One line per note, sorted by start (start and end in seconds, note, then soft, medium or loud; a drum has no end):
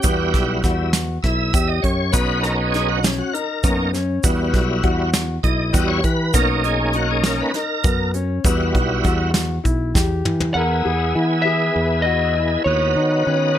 0.00 0.90 G3 medium
0.00 0.54 B3 medium
0.00 0.62 E4 medium
0.00 0.51 G4 loud
0.00 closed hi-hat medium
0.00 shaker medium
0.04 0.31 E2 medium
0.04 0.47 F#4 medium
0.04 kick loud
0.33 0.60 B1 medium
0.33 kick medium
0.33 snare soft
0.33 closed hi-hat medium
0.48 0.63 F#4 medium
0.64 1.17 E2 loud
0.64 0.92 E4 medium
0.64 1.14 F#4 medium
0.64 kick medium
0.64 snare soft
0.64 closed hi-hat medium
0.64 shaker soft
0.93 snare loud
0.93 closed hi-hat medium
0.93 shaker soft
1.23 1.51 B1 medium
1.23 1.49 E4 medium
1.23 1.70 E5 loud
1.23 kick medium
1.23 snare soft
1.23 closed hi-hat medium
1.54 1.81 E2 medium
1.54 2.03 G4 medium
1.54 kick loud
1.54 closed hi-hat medium
1.54 shaker soft
1.68 1.84 D#5 medium
1.82 2.11 F#2 medium
1.82 2.14 C#5 medium
1.82 kick medium
1.82 closed hi-hat medium
2.12 3.20 B1 loud
2.12 2.99 B3 medium
2.12 2.39 B3 medium
2.12 3.00 C#4 medium
2.12 3.00 D#4 medium
2.12 2.44 B4 medium
2.12 kick loud
2.12 closed hi-hat medium
2.12 shaker medium
2.43 2.69 D#4 medium
2.43 2.56 A#4 medium
2.43 snare soft
2.43 closed hi-hat medium
2.72 2.99 D#4 medium
2.72 2.89 G#4 medium
2.72 snare soft
2.72 closed hi-hat medium
2.89 3.04 F#4 medium
3.03 3.29 C#4 medium
3.03 3.10 D#4 medium
3.03 snare loud
3.03 closed hi-hat medium
3.03 shaker soft
3.19 3.34 F#4 medium
3.33 3.59 D#4 medium
3.33 3.90 A#4 medium
3.33 closed hi-hat medium
3.63 4.17 F#2 loud
3.63 3.91 A#3 soft
3.63 3.89 B3 medium
3.63 3.91 C#4 soft
3.63 3.92 D#4 soft
3.63 kick loud
3.63 closed hi-hat medium
3.63 shaker soft
3.93 4.19 C#4 medium
3.93 snare soft
3.93 closed hi-hat medium
3.93 shaker soft
4.24 4.51 E2 loud
4.24 5.10 G3 medium
4.24 4.74 B3 medium
4.24 5.10 E4 medium
4.24 5.11 F#4 medium
4.24 kick loud
4.24 closed hi-hat medium
4.24 shaker medium
4.54 4.81 B1 medium
4.54 kick medium
4.54 snare soft
4.54 closed hi-hat medium
4.83 5.37 E2 medium
4.83 5.34 F#4 medium
4.83 kick medium
4.83 closed hi-hat medium
5.14 snare loud
5.14 closed hi-hat medium
5.14 shaker soft
5.43 5.71 B1 medium
5.43 5.69 E4 medium
5.43 5.90 D#5 loud
5.43 kick medium
5.43 closed hi-hat medium
5.73 6.01 E2 loud
5.73 6.01 G3 medium
5.73 6.01 E4 soft
5.73 6.01 F#4 medium
5.73 6.24 G4 medium
5.73 kick loud
5.73 closed hi-hat medium
5.73 shaker soft
5.88 6.04 C#5 medium
6.04 6.31 E3 medium
6.04 6.35 B4 medium
6.04 kick medium
6.04 closed hi-hat medium
6.04 shaker soft
6.34 7.41 B1 loud
6.34 7.23 A#3 medium
6.34 6.59 B3 medium
6.34 7.23 C#4 medium
6.34 7.24 D#4 medium
6.34 6.48 A#4 loud
6.34 kick loud
6.34 closed hi-hat medium
6.34 shaker medium
6.64 6.89 D#4 medium
6.64 6.96 G#4 medium
6.64 closed hi-hat medium
6.93 7.19 D#4 medium
6.93 7.11 F#4 medium
6.93 closed hi-hat medium
7.11 7.17 G#4 medium
7.24 7.51 A#3 soft
7.24 7.49 C#4 medium
7.24 7.52 C#4 soft
7.24 7.52 D#4 medium
7.24 7.41 A#4 medium
7.24 snare loud
7.24 closed hi-hat medium
7.24 shaker soft
7.41 7.56 B4 medium
7.54 7.79 D#4 medium
7.54 8.11 A#4 loud
7.54 snare soft
7.54 closed hi-hat medium
7.83 8.38 F#2 loud
7.83 8.09 B3 medium
7.83 kick loud
7.83 closed hi-hat medium
7.83 shaker soft
8.14 8.39 C#4 medium
8.14 closed hi-hat medium
8.14 shaker soft
8.44 8.71 E2 loud
8.44 9.31 G3 medium
8.44 8.95 B3 medium
8.44 9.32 E4 medium
8.44 9.32 F#4 medium
8.44 kick loud
8.44 closed hi-hat medium
8.44 shaker medium
8.74 9.01 B1 medium
8.74 kick medium
8.74 closed hi-hat medium
9.04 9.58 E2 loud
9.04 9.54 F#4 medium
9.04 kick medium
9.04 closed hi-hat medium
9.04 shaker soft
9.34 snare loud
9.34 closed hi-hat medium
9.34 shaker soft
9.64 9.92 B1 medium
9.64 9.89 E4 medium
9.64 kick medium
9.64 closed hi-hat medium
9.64 shaker soft
9.94 10.22 E2 loud
9.94 10.45 G4 medium
9.94 kick loud
9.94 snare medium
9.94 shaker soft
10.25 10.52 E3 medium
10.25 mid tom medium
10.40 floor tom medium
10.54 10.82 E2 loud
10.54 12.63 B3 medium
10.54 12.63 E4 medium
10.54 12.63 G#4 medium
10.54 10.80 A#4 medium
10.54 11.41 F#5 loud
10.85 11.12 E2 medium
10.85 11.10 G#4 medium
11.15 11.69 E3 medium
11.15 11.40 E4 medium
11.42 11.95 G#4 medium
11.42 12.02 E5 medium
11.76 12.56 E2 medium
12.02 12.31 F#4 medium
12.02 12.64 D#5 medium
12.36 12.86 E4 medium
12.64 12.93 D#2 medium
12.64 13.59 B3 medium
12.64 13.59 D#4 medium
12.64 13.59 F#4 medium
12.64 13.58 C#5 medium
12.96 13.23 D#3 medium
12.96 13.21 D#4 medium
13.27 13.59 D#3 medium
13.27 13.51 C#4 medium
13.55 13.59 B4 medium